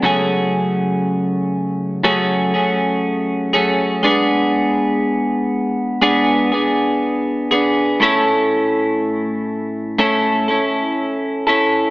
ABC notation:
X:1
M:4/4
L:1/8
Q:1/4=60
K:F#m
V:1 name="Clean electric guitar"
[F,,C,F,A,CG]4 [F,,C,F,A,CG] [F,A,CG]2 [F,A,CG] | [G,B,DG]4 [G,B,DG] [B,DG]2 [B,DG] | [A,,A,CEA]4 [A,,A,CEA] [CEA]2 [CEA] |]